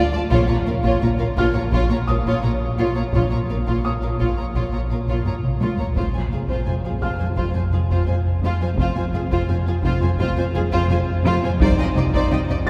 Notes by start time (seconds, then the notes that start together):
Already playing: D2 F4 D5
0.12 D2 F4 D5 A5
0.30 A#1 A#2 F4 C#5, taiko
0.48 A#2 F4 C#5 A#5
0.66 A#1 A#2 F4 A#4 F5
0.83 A#2 F4 C#5, taiko
1.02 A#1 A#2 F4 C#5 A#5
1.18 A#2 F4 A#4 F5
1.36 A#1 A#2 F4 C#5 F6, taiko
1.54 A#2 F4 C#5 A#5
1.72 A#1 A#2 F4 C#5, taiko
1.89 A#2 F4 C#5 A#5
2.07 A#1 A#2 F4 A#4 F5 D#6
2.25 A#2 F4 C#5, taiko
2.43 A#1 A#2 F4 C#5 A#5
2.78 A#1 A#2 F4 C#5
2.96 A#2 F4 C#5 A#5
3.13 A#1 A#2 F4 C#5, taiko
3.30 A#2 F4 C#5 A#5
3.49 A#1 A#2 F4 A#4 F5
3.66 A#2 F4 C#5, taiko
3.84 A#1 A#2 F4 C#5 A#5 D#6
4.02 A#2 F4 A#4 F5
4.19 A#1 A#2 F4 C#5, taiko
4.38 A#2 F4 C#5 A#5
4.55 A#1 A#2 F4 C#5, taiko
4.73 A#2 F4 C#5 A#5
4.90 A#1 A#2 F4 A#4 F5
5.08 A#2 F4 C#5, taiko
5.25 A#1 A#2 F4 C#5 A#5, taiko low-mid
5.43 taiko mid
5.60 A#1 A#2 F4 C#5, taiko high
5.78 A#2 F4 C#5 A#5, taiko low
5.96 F1 F2 F4 C5, taiko
6.14 F2 F4 C5 G#5
6.31 F1 F2 F4 G#4 F5
6.48 F2 F4 C5, taiko
6.66 F1 F2 F4 C5 G#5
6.85 F2 F4 G#4 F5
7.01 F1 F2 F4 C5 F5 F6, taiko
7.20 F2 F4 C5 G#5
7.36 F1 F2 F4 C5, taiko
7.54 F2 F4 C5 G#5
7.71 F1 F2 F4 G#4 F5
7.90 F2 F4 C5, taiko
8.07 F1 F2 F4 C5 G#5
8.42 F1 F2 F4 C5
8.61 F2 F4 C5 G#5
8.77 F1 F2 F4 C5, taiko
8.95 F2 F4 C5 G#5
9.13 F1 F2 F4 G#4 F5
9.30 F2 F4 C5, taiko
9.48 F1 F2 F4 C5 G#5
9.66 F2 F4 G#4 F5
9.82 F1 F2 F4 C5, taiko
10.01 F2 F4 C5 G#5
10.18 F1 F2 F4 C5, taiko
10.37 F2 F4 C5 G#5
10.54 F1 F2 F4 G#4 F5
10.72 F2 F4 C5, taiko
10.90 F1 F2 F4 C5 G#5
11.25 F1 F2 F4 C5
11.43 F2 F4 C5 G#5
11.60 C2 C3 D#4 C5 D5, taiko
11.78 C3 D#4 D#5 G5
11.96 C2 C3 D#4 D5 D#5
12.13 C3 D#4 C5 D5, taiko
12.31 C2 C3 D#4 D#5 G5
12.48 C3 D#4 D5 D#5
12.66 C2 D#4 D5 A6, taiko